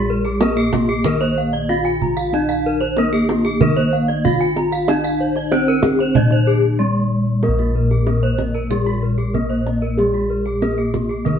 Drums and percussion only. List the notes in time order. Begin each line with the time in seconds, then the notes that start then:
0.25 kendang slap
0.41 kendang high
0.57 kendang slap
0.73 kendang high, kendang low
0.88 kendang slap
1.04 kendang low
1.21 kendang slap
1.53 kendang slap
2.02 kendang low
2.17 kendang slap
2.33 kendang high
2.49 kendang slap
2.81 kendang slap
2.97 kendang high
3.13 kendang slap
3.29 kendang high
3.45 kendang slap
3.61 kendang low
3.77 kendang slap
4.09 kendang slap
4.25 kendang low
4.56 kendang high
4.72 kendang slap
4.88 kendang high
5.04 kendang slap
5.36 kendang slap
5.52 kendang high
5.67 kendang slap
5.83 kendang high, kendang low
5.99 kendang slap
6.15 kendang low
6.31 kendang slap
7.43 kendang high
7.59 kendang slap
7.91 kendang slap
8.07 kendang high
8.23 kendang slap
8.38 kendang high, kendang low
8.55 kendang slap
8.71 kendang low
8.86 kendang slap
9.18 kendang slap
9.34 kendang low
9.50 kendang slap
9.67 kendang high
9.82 kendang slap
9.99 kendang high
10.14 kendang slap
10.46 kendang slap
10.62 kendang high
10.79 kendang slap
10.94 kendang high, kendang low
11.11 kendang slap
11.26 kendang low